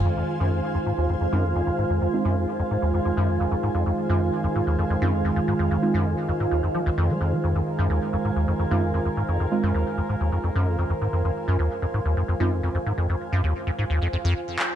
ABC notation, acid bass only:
X:1
M:4/4
L:1/16
Q:1/4=130
K:Fm
V:1 name="Acid bass" clef=bass
F,, F,, z _G,, F,, z F,, A,, E,, F,, F,, G,, F,, F,, F,, A,, | F,, F,, z _G,, F,, z F,, A,, E,, F,, F,, G,, F,, F,, F,, A,, | F,, F,, z _G,, F,, z F,, A,, E,, F,, F,, G,, F,, F,, F,, A,, | F,, F,, z _G,, F,, z F,, A,, E,, F,, F, E,, F,, A, F,, A, |
F,, F,, z _G,, E,, z F,, A,, E,, F,, F,, G,, F,, F,, F,, A,, | F,, F,, z _G,, E,, z F,, A,, E,, F,, F,, G,, F,, F,, F,, A,, | F,, F,, z _G,, E,, z F,, A,, E,, F,, F,, G,, F,, F,, F,, A,, | F,, F,, z _G,, E,, z F,, A,, E,, F,, F,, F,, z4 |]